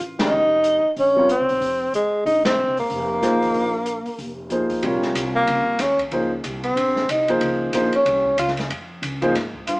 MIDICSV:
0, 0, Header, 1, 6, 480
1, 0, Start_track
1, 0, Tempo, 322407
1, 1431, Time_signature, 4, 2, 24, 8
1, 14589, End_track
2, 0, Start_track
2, 0, Title_t, "Grand piano"
2, 0, Program_c, 0, 0
2, 275, Note_on_c, 0, 51, 57
2, 282, Note_on_c, 0, 56, 54
2, 297, Note_on_c, 0, 61, 55
2, 300, Note_on_c, 0, 67, 57
2, 310, Note_on_c, 0, 70, 67
2, 448, Note_off_c, 0, 51, 0
2, 451, Note_off_c, 0, 56, 0
2, 459, Note_off_c, 0, 61, 0
2, 461, Note_off_c, 0, 67, 0
2, 466, Note_off_c, 0, 70, 0
2, 1727, Note_on_c, 0, 55, 60
2, 1741, Note_on_c, 0, 60, 54
2, 1747, Note_on_c, 0, 65, 59
2, 1750, Note_on_c, 0, 70, 56
2, 1752, Note_on_c, 0, 73, 68
2, 1894, Note_off_c, 0, 55, 0
2, 1901, Note_off_c, 0, 60, 0
2, 1904, Note_off_c, 0, 65, 0
2, 1906, Note_off_c, 0, 70, 0
2, 1907, Note_off_c, 0, 73, 0
2, 4787, Note_on_c, 0, 53, 57
2, 4798, Note_on_c, 0, 58, 55
2, 4810, Note_on_c, 0, 63, 54
2, 4814, Note_on_c, 0, 72, 63
2, 4820, Note_on_c, 0, 68, 54
2, 5504, Note_off_c, 0, 53, 0
2, 5509, Note_off_c, 0, 58, 0
2, 5516, Note_off_c, 0, 63, 0
2, 5517, Note_off_c, 0, 72, 0
2, 5521, Note_off_c, 0, 68, 0
2, 6701, Note_on_c, 0, 53, 51
2, 6714, Note_on_c, 0, 58, 50
2, 6722, Note_on_c, 0, 63, 44
2, 6726, Note_on_c, 0, 68, 50
2, 6728, Note_on_c, 0, 72, 59
2, 7187, Note_off_c, 0, 53, 0
2, 7191, Note_on_c, 0, 55, 57
2, 7193, Note_off_c, 0, 58, 0
2, 7197, Note_off_c, 0, 63, 0
2, 7199, Note_off_c, 0, 68, 0
2, 7200, Note_off_c, 0, 72, 0
2, 7205, Note_on_c, 0, 48, 51
2, 7212, Note_on_c, 0, 65, 52
2, 7213, Note_on_c, 0, 70, 54
2, 7214, Note_on_c, 0, 73, 70
2, 8519, Note_off_c, 0, 55, 0
2, 8526, Note_off_c, 0, 48, 0
2, 8530, Note_off_c, 0, 65, 0
2, 8530, Note_off_c, 0, 70, 0
2, 8531, Note_off_c, 0, 73, 0
2, 9108, Note_on_c, 0, 53, 55
2, 9111, Note_on_c, 0, 58, 51
2, 9125, Note_on_c, 0, 63, 55
2, 9134, Note_on_c, 0, 72, 63
2, 9137, Note_on_c, 0, 68, 51
2, 9373, Note_off_c, 0, 53, 0
2, 9375, Note_off_c, 0, 58, 0
2, 9382, Note_off_c, 0, 63, 0
2, 9387, Note_off_c, 0, 72, 0
2, 9388, Note_off_c, 0, 68, 0
2, 10843, Note_on_c, 0, 53, 62
2, 10849, Note_on_c, 0, 58, 58
2, 10857, Note_on_c, 0, 68, 60
2, 10861, Note_on_c, 0, 63, 59
2, 10867, Note_on_c, 0, 72, 73
2, 11473, Note_off_c, 0, 53, 0
2, 11476, Note_off_c, 0, 58, 0
2, 11480, Note_off_c, 0, 68, 0
2, 11482, Note_off_c, 0, 63, 0
2, 11485, Note_off_c, 0, 72, 0
2, 11514, Note_on_c, 0, 53, 62
2, 11525, Note_on_c, 0, 58, 58
2, 11529, Note_on_c, 0, 63, 56
2, 11535, Note_on_c, 0, 72, 72
2, 11536, Note_on_c, 0, 68, 54
2, 11776, Note_off_c, 0, 53, 0
2, 11782, Note_off_c, 0, 58, 0
2, 11783, Note_off_c, 0, 63, 0
2, 11787, Note_off_c, 0, 68, 0
2, 11787, Note_off_c, 0, 72, 0
2, 13719, Note_on_c, 0, 53, 77
2, 13729, Note_on_c, 0, 58, 69
2, 13739, Note_on_c, 0, 63, 64
2, 13739, Note_on_c, 0, 68, 67
2, 13745, Note_on_c, 0, 72, 75
2, 13890, Note_off_c, 0, 53, 0
2, 13895, Note_off_c, 0, 58, 0
2, 13899, Note_off_c, 0, 63, 0
2, 13900, Note_off_c, 0, 68, 0
2, 13903, Note_off_c, 0, 72, 0
2, 14589, End_track
3, 0, Start_track
3, 0, Title_t, "Tenor saxophone"
3, 0, Program_c, 1, 66
3, 311, Note_on_c, 1, 63, 91
3, 1385, Note_off_c, 1, 63, 0
3, 1474, Note_on_c, 1, 61, 88
3, 1901, Note_off_c, 1, 61, 0
3, 1952, Note_on_c, 1, 60, 82
3, 2832, Note_off_c, 1, 60, 0
3, 2907, Note_on_c, 1, 56, 83
3, 3337, Note_off_c, 1, 56, 0
3, 3364, Note_on_c, 1, 63, 88
3, 3631, Note_off_c, 1, 63, 0
3, 3653, Note_on_c, 1, 60, 88
3, 4095, Note_off_c, 1, 60, 0
3, 4163, Note_on_c, 1, 58, 91
3, 6672, Note_off_c, 1, 58, 0
3, 7971, Note_on_c, 1, 58, 88
3, 8650, Note_on_c, 1, 61, 77
3, 8673, Note_off_c, 1, 58, 0
3, 8934, Note_off_c, 1, 61, 0
3, 9889, Note_on_c, 1, 60, 92
3, 10586, Note_on_c, 1, 63, 81
3, 10608, Note_off_c, 1, 60, 0
3, 10862, Note_off_c, 1, 63, 0
3, 11844, Note_on_c, 1, 61, 87
3, 12446, Note_off_c, 1, 61, 0
3, 12492, Note_on_c, 1, 65, 85
3, 12661, Note_off_c, 1, 65, 0
3, 14405, Note_on_c, 1, 65, 81
3, 14589, Note_off_c, 1, 65, 0
3, 14589, End_track
4, 0, Start_track
4, 0, Title_t, "Upright bass"
4, 0, Program_c, 2, 32
4, 0, Note_on_c, 2, 33, 66
4, 430, Note_off_c, 2, 33, 0
4, 463, Note_on_c, 2, 29, 79
4, 1186, Note_off_c, 2, 29, 0
4, 1437, Note_on_c, 2, 34, 70
4, 2030, Note_off_c, 2, 34, 0
4, 2076, Note_on_c, 2, 36, 61
4, 2223, Note_off_c, 2, 36, 0
4, 2237, Note_on_c, 2, 35, 64
4, 2383, Note_off_c, 2, 35, 0
4, 2391, Note_on_c, 2, 29, 83
4, 2838, Note_off_c, 2, 29, 0
4, 2878, Note_on_c, 2, 32, 61
4, 3322, Note_off_c, 2, 32, 0
4, 3356, Note_on_c, 2, 34, 75
4, 3949, Note_off_c, 2, 34, 0
4, 3983, Note_on_c, 2, 36, 58
4, 4136, Note_off_c, 2, 36, 0
4, 4148, Note_on_c, 2, 32, 68
4, 4299, Note_off_c, 2, 32, 0
4, 4319, Note_on_c, 2, 29, 82
4, 4911, Note_off_c, 2, 29, 0
4, 4948, Note_on_c, 2, 32, 52
4, 5093, Note_off_c, 2, 32, 0
4, 5102, Note_on_c, 2, 33, 61
4, 5255, Note_off_c, 2, 33, 0
4, 5269, Note_on_c, 2, 34, 71
4, 5989, Note_off_c, 2, 34, 0
4, 6229, Note_on_c, 2, 29, 82
4, 6949, Note_off_c, 2, 29, 0
4, 7188, Note_on_c, 2, 34, 72
4, 7656, Note_off_c, 2, 34, 0
4, 7663, Note_on_c, 2, 36, 79
4, 8133, Note_off_c, 2, 36, 0
4, 8160, Note_on_c, 2, 37, 85
4, 8429, Note_off_c, 2, 37, 0
4, 8629, Note_on_c, 2, 39, 73
4, 9096, Note_off_c, 2, 39, 0
4, 9108, Note_on_c, 2, 37, 68
4, 9575, Note_off_c, 2, 37, 0
4, 9599, Note_on_c, 2, 36, 74
4, 10052, Note_off_c, 2, 36, 0
4, 10061, Note_on_c, 2, 34, 75
4, 10532, Note_off_c, 2, 34, 0
4, 10554, Note_on_c, 2, 36, 79
4, 11018, Note_off_c, 2, 36, 0
4, 11030, Note_on_c, 2, 37, 77
4, 11496, Note_off_c, 2, 37, 0
4, 11512, Note_on_c, 2, 34, 80
4, 11784, Note_off_c, 2, 34, 0
4, 11992, Note_on_c, 2, 36, 84
4, 12457, Note_off_c, 2, 36, 0
4, 12465, Note_on_c, 2, 37, 81
4, 12933, Note_off_c, 2, 37, 0
4, 12951, Note_on_c, 2, 41, 74
4, 13416, Note_off_c, 2, 41, 0
4, 13427, Note_on_c, 2, 37, 85
4, 13894, Note_off_c, 2, 37, 0
4, 13920, Note_on_c, 2, 44, 78
4, 14381, Note_off_c, 2, 44, 0
4, 14406, Note_on_c, 2, 43, 84
4, 14589, Note_off_c, 2, 43, 0
4, 14589, End_track
5, 0, Start_track
5, 0, Title_t, "Muted upright bass strokes"
5, 1251, Note_on_c, 9, 29, 34
5, 1400, Note_off_c, 9, 29, 0
5, 6047, Note_on_c, 9, 29, 37
5, 6195, Note_off_c, 9, 29, 0
5, 6996, Note_on_c, 9, 29, 34
5, 7145, Note_off_c, 9, 29, 0
5, 8441, Note_on_c, 9, 29, 36
5, 8590, Note_off_c, 9, 29, 0
5, 11817, Note_on_c, 9, 29, 37
5, 11965, Note_off_c, 9, 29, 0
5, 14589, End_track
6, 0, Start_track
6, 0, Title_t, "Drums"
6, 287, Note_on_c, 9, 38, 75
6, 290, Note_on_c, 9, 51, 56
6, 436, Note_off_c, 9, 38, 0
6, 439, Note_off_c, 9, 51, 0
6, 950, Note_on_c, 9, 42, 47
6, 1099, Note_off_c, 9, 42, 0
6, 1438, Note_on_c, 9, 46, 39
6, 1586, Note_off_c, 9, 46, 0
6, 1924, Note_on_c, 9, 42, 46
6, 2073, Note_off_c, 9, 42, 0
6, 2218, Note_on_c, 9, 46, 36
6, 2366, Note_off_c, 9, 46, 0
6, 2406, Note_on_c, 9, 46, 43
6, 2555, Note_off_c, 9, 46, 0
6, 2886, Note_on_c, 9, 42, 46
6, 3035, Note_off_c, 9, 42, 0
6, 3372, Note_on_c, 9, 46, 40
6, 3520, Note_off_c, 9, 46, 0
6, 3648, Note_on_c, 9, 38, 74
6, 3651, Note_on_c, 9, 51, 62
6, 3797, Note_off_c, 9, 38, 0
6, 3800, Note_off_c, 9, 51, 0
6, 4127, Note_on_c, 9, 46, 32
6, 4276, Note_off_c, 9, 46, 0
6, 4316, Note_on_c, 9, 46, 41
6, 4464, Note_off_c, 9, 46, 0
6, 4801, Note_on_c, 9, 38, 34
6, 4804, Note_on_c, 9, 42, 49
6, 4950, Note_off_c, 9, 38, 0
6, 4953, Note_off_c, 9, 42, 0
6, 5089, Note_on_c, 9, 36, 49
6, 5098, Note_on_c, 9, 46, 33
6, 5238, Note_off_c, 9, 36, 0
6, 5247, Note_off_c, 9, 46, 0
6, 5275, Note_on_c, 9, 46, 36
6, 5423, Note_off_c, 9, 46, 0
6, 5745, Note_on_c, 9, 42, 48
6, 5894, Note_off_c, 9, 42, 0
6, 6040, Note_on_c, 9, 46, 34
6, 6189, Note_off_c, 9, 46, 0
6, 6232, Note_on_c, 9, 46, 41
6, 6381, Note_off_c, 9, 46, 0
6, 6702, Note_on_c, 9, 42, 46
6, 6851, Note_off_c, 9, 42, 0
6, 6994, Note_on_c, 9, 46, 35
6, 6998, Note_on_c, 9, 36, 49
6, 7143, Note_off_c, 9, 46, 0
6, 7147, Note_off_c, 9, 36, 0
6, 7185, Note_on_c, 9, 51, 53
6, 7334, Note_off_c, 9, 51, 0
6, 7481, Note_on_c, 9, 38, 37
6, 7630, Note_off_c, 9, 38, 0
6, 7672, Note_on_c, 9, 44, 60
6, 7672, Note_on_c, 9, 51, 61
6, 7821, Note_off_c, 9, 44, 0
6, 7821, Note_off_c, 9, 51, 0
6, 8149, Note_on_c, 9, 51, 57
6, 8298, Note_off_c, 9, 51, 0
6, 8615, Note_on_c, 9, 38, 35
6, 8618, Note_on_c, 9, 44, 51
6, 8618, Note_on_c, 9, 51, 67
6, 8764, Note_off_c, 9, 38, 0
6, 8767, Note_off_c, 9, 44, 0
6, 8767, Note_off_c, 9, 51, 0
6, 8920, Note_on_c, 9, 51, 42
6, 8921, Note_on_c, 9, 36, 49
6, 9069, Note_off_c, 9, 51, 0
6, 9070, Note_off_c, 9, 36, 0
6, 9103, Note_on_c, 9, 51, 50
6, 9252, Note_off_c, 9, 51, 0
6, 9585, Note_on_c, 9, 44, 50
6, 9585, Note_on_c, 9, 51, 57
6, 9734, Note_off_c, 9, 44, 0
6, 9734, Note_off_c, 9, 51, 0
6, 9878, Note_on_c, 9, 51, 40
6, 10027, Note_off_c, 9, 51, 0
6, 10079, Note_on_c, 9, 51, 58
6, 10228, Note_off_c, 9, 51, 0
6, 10366, Note_on_c, 9, 38, 32
6, 10515, Note_off_c, 9, 38, 0
6, 10556, Note_on_c, 9, 44, 51
6, 10556, Note_on_c, 9, 51, 65
6, 10705, Note_off_c, 9, 44, 0
6, 10705, Note_off_c, 9, 51, 0
6, 10842, Note_on_c, 9, 51, 44
6, 10991, Note_off_c, 9, 51, 0
6, 11029, Note_on_c, 9, 51, 58
6, 11178, Note_off_c, 9, 51, 0
6, 11507, Note_on_c, 9, 44, 50
6, 11507, Note_on_c, 9, 51, 66
6, 11656, Note_off_c, 9, 44, 0
6, 11656, Note_off_c, 9, 51, 0
6, 11799, Note_on_c, 9, 51, 42
6, 11948, Note_off_c, 9, 51, 0
6, 11998, Note_on_c, 9, 51, 53
6, 12147, Note_off_c, 9, 51, 0
6, 12288, Note_on_c, 9, 36, 54
6, 12437, Note_off_c, 9, 36, 0
6, 12473, Note_on_c, 9, 44, 57
6, 12473, Note_on_c, 9, 51, 64
6, 12622, Note_off_c, 9, 44, 0
6, 12622, Note_off_c, 9, 51, 0
6, 12623, Note_on_c, 9, 38, 28
6, 12762, Note_on_c, 9, 51, 44
6, 12772, Note_off_c, 9, 38, 0
6, 12793, Note_on_c, 9, 38, 41
6, 12910, Note_off_c, 9, 51, 0
6, 12942, Note_off_c, 9, 38, 0
6, 12958, Note_on_c, 9, 51, 59
6, 13107, Note_off_c, 9, 51, 0
6, 13439, Note_on_c, 9, 44, 48
6, 13439, Note_on_c, 9, 51, 65
6, 13588, Note_off_c, 9, 44, 0
6, 13588, Note_off_c, 9, 51, 0
6, 13727, Note_on_c, 9, 51, 40
6, 13876, Note_off_c, 9, 51, 0
6, 13921, Note_on_c, 9, 38, 36
6, 13924, Note_on_c, 9, 51, 60
6, 14070, Note_off_c, 9, 38, 0
6, 14073, Note_off_c, 9, 51, 0
6, 14215, Note_on_c, 9, 36, 48
6, 14364, Note_off_c, 9, 36, 0
6, 14401, Note_on_c, 9, 44, 56
6, 14401, Note_on_c, 9, 51, 60
6, 14549, Note_off_c, 9, 44, 0
6, 14549, Note_off_c, 9, 51, 0
6, 14589, End_track
0, 0, End_of_file